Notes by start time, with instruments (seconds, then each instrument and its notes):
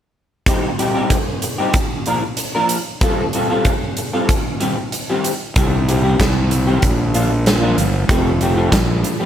0.46 clean electric guitar G3 C4 D#4 G4, kick, closed hi-hat
0.78 clean electric guitar G3 C4 D#4 G4, closed hi-hat
0.94 clean electric guitar G3 C4 D#4 G4
1.10 kick, closed hi-hat
1.42 muted clean electric guitar stroke, closed hi-hat
1.58 clean electric guitar G3 C4 D#4 G4
1.74 kick, closed hi-hat
2.06 clean electric guitar F3 A#3 D4 A#4, closed hi-hat
2.23 muted clean electric guitar stroke
2.37 muted clean electric guitar stroke, closed hi-hat
2.55 clean electric guitar F3 A#3 D4 A#4
2.69 closed hi-hat
3.01 clean electric guitar G3 C4 F4 A4, kick, closed hi-hat
3.33 clean electric guitar G3 C4 F4 A4, closed hi-hat
3.50 clean electric guitar G3 C4 F4 A4
3.65 kick, closed hi-hat
3.97 muted clean electric guitar stroke, closed hi-hat
4.13 clean electric guitar G3 C4 F4 A4
4.29 kick, closed hi-hat
4.60 clean electric guitar D#3 G3 C4 G4, closed hi-hat
4.77 muted clean electric guitar stroke
4.92 muted clean electric guitar stroke, closed hi-hat
5.10 clean electric guitar D#3 G3 C4 G4
5.24 closed hi-hat
5.56 fingered electric bass C2, clean electric guitar D#3 G3 C4 G4, kick, closed hi-hat
5.88 clean electric guitar D#3 G3 C4 G4, closed hi-hat
6.03 clean electric guitar D#3 G3 C4 G4
6.20 fingered electric bass C2, kick, snare, closed hi-hat
6.51 muted clean electric guitar stroke, closed hi-hat
6.67 clean electric guitar D#3 G3 C4 G4
6.82 fingered electric bass A#1, kick, closed hi-hat
7.14 clean electric guitar F3 A#3 D4 F4, closed hi-hat
7.30 muted clean electric guitar stroke
7.46 muted clean electric guitar stroke, snare, closed hi-hat
7.61 clean electric guitar F3 A#3 D4 F4
7.78 fingered electric bass G1, closed hi-hat
8.08 fingered electric bass F1, clean electric guitar F3 A3 C4 G4, kick, closed hi-hat
8.41 clean electric guitar F3 A3 C4 G4, closed hi-hat
8.56 clean electric guitar F3 A3 C4 G4
8.72 fingered electric bass A#1, kick, snare, closed hi-hat
9.04 muted clean electric guitar stroke, closed hi-hat
9.20 clean electric guitar F3 A3 C4 G4